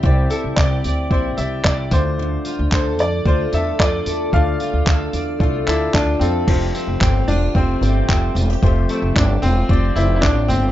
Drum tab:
CC |--------|--------|--------|x-------|
TB |-x-x-x-x|-x-x-x-x|-x-x-x-x|-x-x-x-x|
CP |--x---x-|--x---x-|--x--xx-|--x---x-|
BD |o-o-o-oo|--o-o-o-|o-o-o-o-|o-o-o-o-|

CC |--------|
TB |-x-x-x-x|
CP |--x---x-|
BD |o-o-o-o-|